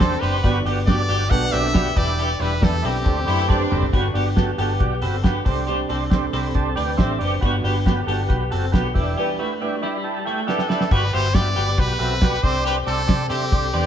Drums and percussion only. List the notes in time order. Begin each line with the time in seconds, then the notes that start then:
0.00 kick, snare, hi-hat pedal, ride
0.23 open hi-hat
0.44 kick, hi-hat pedal, ride
0.66 open hi-hat
0.88 kick, snare, hi-hat pedal, ride
1.09 open hi-hat
1.30 kick, hi-hat pedal, ride
1.53 open hi-hat
1.74 kick, snare, hi-hat pedal, ride
1.97 kick, open hi-hat
2.19 hi-hat pedal, ride
2.40 open hi-hat
2.62 kick, snare, hi-hat pedal, ride
2.84 open hi-hat
3.06 kick, hi-hat pedal, ride
3.28 open hi-hat
3.50 kick, snare
3.72 mid tom
3.83 floor tom
3.93 kick, closed hi-hat
4.15 open hi-hat
4.37 kick, snare, closed hi-hat
4.58 open hi-hat
4.80 kick, closed hi-hat
5.02 open hi-hat
5.24 kick, snare, closed hi-hat
5.46 kick, open hi-hat
5.68 closed hi-hat
5.89 open hi-hat
6.12 kick, snare, closed hi-hat
6.33 open hi-hat
6.55 kick, closed hi-hat
6.77 open hi-hat
6.98 kick, snare, closed hi-hat
7.21 open hi-hat
7.43 kick, closed hi-hat
7.65 open hi-hat
7.86 kick, snare, closed hi-hat
8.09 open hi-hat
8.30 kick, closed hi-hat
8.52 open hi-hat
8.74 kick, snare, closed hi-hat
8.96 kick, open hi-hat
10.49 snare
10.59 snare
10.70 snare
10.81 snare
10.91 kick, crash
11.14 open hi-hat
11.34 kick, snare, hi-hat pedal, ride
11.56 open hi-hat
11.78 kick, hi-hat pedal, ride
11.99 open hi-hat
12.22 kick, snare, hi-hat pedal, ride
12.43 kick, open hi-hat
12.66 hi-hat pedal, ride
12.87 open hi-hat
13.09 kick, snare, hi-hat pedal, ride
13.30 open hi-hat
13.52 kick, hi-hat pedal, ride
13.74 open hi-hat